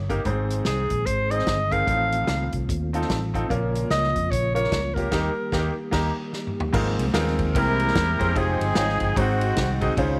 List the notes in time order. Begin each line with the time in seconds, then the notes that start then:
Already playing: G1
0.09 A#3 D#4 G4 A#4, kick, closed hi-hat
0.25 G#1 G#2 D#3 G#3 C4 D#4 G#4 C5, kick, closed hi-hat
0.50 closed hi-hat
0.65 C2 G#4, snare, closed hi-hat
0.90 A#1, kick, closed hi-hat
1.06 G#1 C5, kick, closed hi-hat
1.30 C4 D#4 G#4 C5 D#5, closed hi-hat
1.39 snare
1.47 G1, kick, snare, closed hi-hat
1.71 C4 D#4 G#4 A#4 F5, kick, closed hi-hat
1.86 A1 A2 D#3 A3 C4 D#4 F4 A4, kick, closed hi-hat
2.12 closed hi-hat
2.27 C#2, snare, closed hi-hat
2.52 C2, kick, closed hi-hat
2.69 D#2, kick, closed hi-hat
2.93 C4 D#4 F4 A4, closed hi-hat
3.02 snare
3.10 A1, kick, snare, closed hi-hat
3.34 C4 D#4 F4 A4, kick, closed hi-hat
3.49 A#1 A#2 C#3 F3 A#3 C#4 F4 A#4, kick, closed hi-hat
3.75 closed hi-hat
3.90 C#2 D#5, snare, closed hi-hat
4.04 snare
4.15 F2, kick, closed hi-hat
4.31 A#1 C#5, kick, closed hi-hat
4.55 A#3 C#4 F4 A#4 C#5, closed hi-hat
4.64 snare
4.72 C#2, kick, snare, closed hi-hat
4.94 A#3 C#4 F4 G4 A#4, kick, closed hi-hat
5.11 D#2 D#3 G3 A#3 D#4 G4, kick, snare, crash
5.18 A#4
5.52 D#2 D#3 A#3 D#4 G4, kick, snare
5.59 A#4
5.91 D#2 A#3 D#4 G4 A#4 A#5, kick, snare, crash
6.33 snare
6.47 mid tom
6.60 floor tom
6.73 G#1 G#2 F3 G#3 A#3 C4 D#4 F4 G#4 A#4, kick, crash
6.99 C2, ride
7.13 D#2 B3 D#4 F4 G#4 A#4, snare, ride
7.18 C4
7.27 snare
7.39 kick, ride
7.55 C2 C3 E3 G#3 C4 E4 G4 A#4, kick, ride
7.80 ride
7.88 snare
7.95 E2, kick, snare, ride
8.19 F2 C4 E4 G4 G#4 C5, kick, ride
8.34 F1 F3 G#3 C4 D#4 F4 G4 G#4 C5 G5, kick, ride
8.60 G1, ride
8.75 G#1 D#4 F4 G#4 C#5 G5, snare, ride
8.82 D#5
8.89 snare
9.00 G1, kick, ride
9.16 G#1 G#2 D#3 C4 D#4 F#4 G#4 C5, kick, ride
9.41 ride
9.56 C2, kick, snare, ride
9.81 C4 D#4 F#4 G#4 D#5, kick, ride
9.97 C#2 C#3 C#4 D#4 F4 G#4 C5, kick, ride